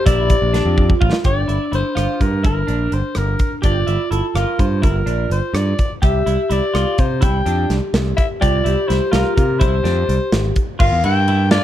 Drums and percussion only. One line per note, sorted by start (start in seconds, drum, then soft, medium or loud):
0.06 kick loud
0.06 closed hi-hat medium
0.30 kick medium
0.30 closed hi-hat medium
0.54 snare soft
0.54 closed hi-hat medium
0.78 kick medium
0.90 kick medium
1.02 kick medium
1.13 snare medium
1.24 kick medium
1.24 closed hi-hat medium
1.49 closed hi-hat soft
1.73 closed hi-hat soft
1.97 cross-stick medium
1.97 closed hi-hat medium
2.21 kick medium
2.21 closed hi-hat soft
2.44 kick medium
2.44 closed hi-hat medium
2.68 closed hi-hat soft
2.92 closed hi-hat soft
3.15 cross-stick medium
3.15 closed hi-hat medium
3.39 kick medium
3.39 closed hi-hat soft
3.63 kick medium
3.63 closed hi-hat medium
3.88 closed hi-hat soft
4.12 closed hi-hat soft
4.36 cross-stick medium
4.36 closed hi-hat medium
4.59 kick medium
4.59 closed hi-hat medium
4.83 kick medium
4.83 closed hi-hat medium
5.07 closed hi-hat soft
5.31 closed hi-hat soft
5.55 cross-stick medium
5.55 closed hi-hat medium
5.79 kick medium
5.79 closed hi-hat medium
6.03 kick medium
6.03 closed hi-hat medium
6.27 closed hi-hat soft
6.51 closed hi-hat soft
6.75 cross-stick medium
6.75 closed hi-hat medium
6.98 kick medium
6.98 closed hi-hat medium
7.22 kick loud
7.22 closed hi-hat medium
7.46 closed hi-hat medium
7.70 snare soft
7.70 closed hi-hat soft
7.94 snare loud
7.94 closed hi-hat medium
8.18 kick medium
8.18 closed hi-hat medium
8.42 kick medium
8.42 closed hi-hat medium
8.66 closed hi-hat medium
8.90 snare soft
8.90 closed hi-hat medium
9.13 snare medium
9.13 closed hi-hat medium
9.38 kick medium
9.38 closed hi-hat medium
9.61 kick medium
9.61 closed hi-hat medium
9.85 snare soft
9.85 closed hi-hat soft
10.09 closed hi-hat soft
10.32 snare medium
10.32 closed hi-hat medium
10.56 kick medium
10.56 closed hi-hat soft
10.80 kick loud
10.80 crash loud
11.04 ride medium
11.28 ride medium
11.51 snare loud
11.51 ride medium